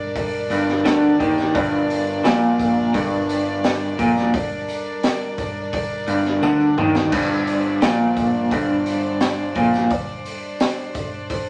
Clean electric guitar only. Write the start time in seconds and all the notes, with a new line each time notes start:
0.51 G2
0.85 D3
1.20 D#3
1.55 G2
2.24 A#2
2.94 G2
3.99 A#2
6.08 G2
6.43 D3
6.78 D#3
7.12 G2
7.82 A#2
8.52 G2
9.56 A#2